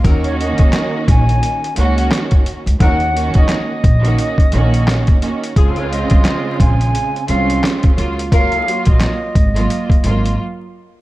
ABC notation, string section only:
X:1
M:4/4
L:1/16
Q:"Swing 16ths" 1/4=87
K:Ebdor
V:1 name="String section"
[E,B,DG]8- [E,B,DG] z [E,B,DG]4- [E,B,DG] z | [E,B,DG]2 [E,B,DG]4 z [E,B,DG]2 z [E,B,DG]4 [E,B,DG]2 | [D,A,CF]8- [D,A,CF] z [A,CDF]4 [G,B,F] z | [G,B,F]2 [G,B,F]4 z [G,B,F]2 z [G,B,F]2 z4 |]